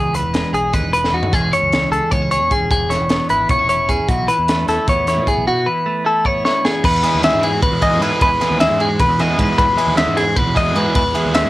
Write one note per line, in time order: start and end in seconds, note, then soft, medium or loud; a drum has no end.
0.00 0.22 C#2 medium
0.00 1.31 E2 medium
0.00 0.13 E3 medium
0.00 0.33 G#3 medium
0.00 0.15 G#4 medium
0.13 1.32 E3 medium
0.13 0.54 B4 medium
0.13 closed hi-hat medium
0.24 0.42 E1 medium
0.34 1.33 G#3 medium
0.34 snare medium
0.34 closed hi-hat medium
0.53 0.72 B1 medium
0.53 0.95 G#4 medium
0.53 0.74 G#4 medium
0.53 closed hi-hat medium
0.73 0.83 D#2 medium
0.73 1.13 D#4 medium
0.73 0.92 B4 medium
0.73 kick medium
0.73 snare soft
0.73 closed hi-hat medium
0.83 1.11 E1 medium
0.93 1.13 B4 medium
0.93 1.32 B4 medium
0.93 closed hi-hat medium
1.04 snare soft
1.13 1.22 E2 medium
1.13 1.31 D#4 medium
1.13 1.33 F#4 medium
1.23 floor tom medium
1.31 1.51 E1 medium
1.31 2.70 E2 medium
1.31 1.52 E3 medium
1.31 1.73 G#3 soft
1.31 2.12 C#4 medium
1.31 1.53 G#4 medium
1.31 1.93 G#4 medium
1.31 kick medium
1.31 closed hi-hat medium
1.52 2.89 E3 medium
1.52 1.91 C#5 medium
1.52 closed hi-hat medium
1.62 1.90 C#2 medium
1.73 2.69 G#3 medium
1.73 snare medium
1.73 closed hi-hat medium
1.91 2.01 C#2 medium
1.91 2.31 G#4 medium
1.91 2.11 A4 medium
1.91 closed hi-hat medium
2.11 2.41 C#2 medium
2.11 2.22 B3 medium
2.11 2.30 C#5 medium
2.11 kick loud
2.11 closed hi-hat medium
2.22 2.50 C#4 soft
2.31 2.69 G#4 medium
2.31 2.51 C#5 medium
2.31 closed hi-hat medium
2.41 2.51 E2 medium
2.51 2.69 C#4 medium
2.51 2.70 G#4 medium
2.51 kick medium
2.51 closed hi-hat medium
2.61 2.70 E1 medium
2.71 2.98 E1 medium
2.71 4.09 E2 medium
2.71 2.91 G#4 loud
2.71 kick loud
2.71 closed hi-hat medium
2.89 4.27 E3 medium
2.89 3.30 C#5 medium
2.89 snare soft
2.89 closed hi-hat medium
3.01 3.19 E1 medium
3.09 3.49 B3 medium
3.09 snare medium
3.09 closed hi-hat medium
3.29 3.49 G#1 medium
3.29 3.69 E4 medium
3.29 3.50 B4 medium
3.29 closed hi-hat medium
3.49 3.59 B1 medium
3.49 3.59 B3 medium
3.49 3.68 C#5 medium
3.49 kick loud
3.49 closed hi-hat medium
3.59 3.87 E1 medium
3.59 3.89 C#4 soft
3.69 4.68 E4 medium
3.69 3.89 C#5 medium
3.69 closed hi-hat medium
3.89 3.98 E2 medium
3.89 4.07 C#4 medium
3.89 4.08 G#4 medium
3.89 kick medium
3.89 closed hi-hat medium
4.08 4.27 B1 loud
4.08 4.29 B2 medium
4.08 4.28 F#4 medium
4.08 kick loud
4.08 closed hi-hat medium
4.28 5.66 E3 medium
4.28 4.68 B4 medium
4.28 closed hi-hat medium
4.38 4.66 E2 medium
4.48 5.44 A3 medium
4.48 snare medium
4.48 closed hi-hat medium
4.68 4.77 E2 medium
4.68 5.09 E4 medium
4.68 4.88 A4 medium
4.68 snare soft
4.68 closed hi-hat medium
4.88 5.18 E2 medium
4.88 5.28 B3 medium
4.88 5.07 C#5 medium
4.88 kick loud
4.88 closed hi-hat medium
5.07 6.03 E4 medium
5.07 5.27 C#5 medium
5.07 snare soft
5.07 closed hi-hat medium
5.17 5.26 B2 medium
5.27 6.23 B3 medium
5.27 5.47 G#4 medium
5.27 kick medium
5.27 closed hi-hat medium
5.37 5.46 B1 medium
5.47 5.67 B2 medium
5.47 5.67 F#4 loud
5.66 6.82 E3 medium
5.66 6.06 B4 medium
5.86 6.82 A3 medium
6.05 6.44 E4 medium
6.05 6.26 A4 medium
6.25 6.64 B3 medium
6.25 6.44 C#5 medium
6.25 kick medium
6.45 7.40 E4 medium
6.45 6.65 C#5 medium
6.45 snare medium
6.65 8.22 B3 medium
6.65 6.84 G#4 medium
6.65 snare loud
6.84 7.02 E2 loud
6.84 8.21 E2 medium
6.84 7.23 B4 loud
6.84 kick loud
6.84 crash loud
7.03 7.81 E3 medium
7.03 7.22 G#3 medium
7.03 7.22 B3 medium
7.03 7.22 E4 medium
7.03 7.23 G#4 medium
7.03 ride medium
7.14 7.32 D#2 medium
7.22 8.01 G#3 medium
7.22 7.49 G#3 medium
7.22 7.49 B3 medium
7.22 7.49 E4 medium
7.22 7.49 G#4 medium
7.22 7.43 E5 medium
7.22 snare loud
7.22 ride loud
7.33 7.60 G#2 medium
7.41 7.52 E4 medium
7.41 7.62 G#4 medium
7.41 ride medium
7.52 8.21 F#4 medium
7.62 7.71 D#2 medium
7.62 7.82 B2 medium
7.62 7.82 B4 medium
7.62 kick loud
7.62 ride loud
7.71 8.01 E2 loud
7.81 8.41 E3 medium
7.81 8.01 G#3 medium
7.81 8.01 B3 medium
7.81 8.01 E4 medium
7.81 8.01 G#4 loud
7.81 8.02 D#5 medium
7.81 kick medium
7.81 ride medium
8.01 8.11 G#2 medium
8.01 8.27 G#3 medium
8.01 8.60 G#3 medium
8.01 8.27 B3 medium
8.01 8.28 E4 medium
8.01 8.28 G#4 medium
8.01 8.21 B4 medium
8.01 ride medium
8.21 9.57 E2 medium
8.21 8.39 E2 loud
8.21 8.60 B4 loud
8.21 kick loud
8.21 ride loud
8.41 9.19 E3 medium
8.41 8.59 G#3 medium
8.41 8.60 B3 medium
8.41 8.60 E4 medium
8.41 8.61 G#4 medium
8.41 snare soft
8.41 ride medium
8.50 8.69 D#2 medium
8.60 8.86 G#3 medium
8.60 9.39 G#3 medium
8.60 8.86 B3 medium
8.60 8.86 E4 medium
8.60 8.87 G#4 medium
8.60 8.80 E5 medium
8.60 snare loud
8.60 ride medium
8.69 8.97 G#2 loud
8.80 8.89 E4 medium
8.80 9.00 G#4 medium
8.80 ride medium
8.89 9.58 F#4 medium
8.99 9.08 D#2 medium
8.99 9.19 B2 medium
8.99 9.20 B4 medium
8.99 kick loud
8.99 snare soft
8.99 ride medium
9.08 9.39 E2 loud
9.19 9.77 E3 medium
9.19 9.38 G#3 medium
9.19 9.38 B3 medium
9.19 9.39 E4 medium
9.19 9.39 G#4 medium
9.19 9.39 D#5 medium
9.19 snare soft
9.19 ride medium
9.39 9.48 G#2 medium
9.39 9.98 G#3 medium
9.39 9.64 G#3 medium
9.39 9.64 B3 medium
9.39 9.65 E4 medium
9.39 9.65 G#4 medium
9.39 9.57 B4 medium
9.39 kick medium
9.39 ride medium
9.58 10.94 E2 medium
9.58 9.76 E2 loud
9.58 9.97 B4 loud
9.58 kick loud
9.58 ride medium
9.77 10.56 E3 medium
9.77 9.95 G#3 medium
9.77 9.96 B3 medium
9.77 9.96 E4 medium
9.77 9.96 G#4 medium
9.77 ride medium
9.87 10.05 D#2 medium
9.96 10.22 G#3 medium
9.96 10.77 G#3 medium
9.96 10.23 B3 medium
9.96 10.23 E4 medium
9.96 10.23 G#4 medium
9.96 10.17 E5 medium
9.96 snare loud
9.96 ride medium
10.07 10.34 G#2 loud
10.17 10.28 E4 medium
10.17 10.36 G#4 medium
10.17 snare soft
10.17 ride medium
10.28 10.96 F#4 medium
10.36 10.46 D#2 medium
10.36 10.57 B2 medium
10.36 10.56 B4 medium
10.36 kick loud
10.36 ride loud
10.46 10.76 E2 loud
10.55 11.15 E3 medium
10.55 10.73 G#3 medium
10.55 10.74 B3 medium
10.55 10.74 E4 medium
10.55 10.74 G#4 loud
10.55 10.76 D#5 medium
10.55 kick medium
10.55 ride medium
10.75 10.85 G#2 medium
10.75 11.01 G#3 medium
10.75 11.35 G#3 medium
10.75 11.01 B3 medium
10.75 11.01 E4 medium
10.75 11.01 G#4 medium
10.75 10.95 B4 medium
10.75 ride medium
10.95 11.13 E2 loud
10.95 11.50 E2 medium
10.95 11.35 B4 loud
10.95 kick loud
10.95 ride loud
11.15 11.50 E3 medium
11.15 11.32 G#3 medium
11.15 11.33 B3 medium
11.15 11.33 E4 medium
11.15 11.33 G#4 medium
11.15 ride medium
11.25 11.43 D#2 medium
11.34 11.50 G#3 medium
11.34 11.50 B3 medium
11.34 11.50 E4 medium
11.34 11.50 G#4 medium
11.34 11.50 E5 medium
11.34 snare loud
11.34 ride loud
11.44 11.50 G#2 medium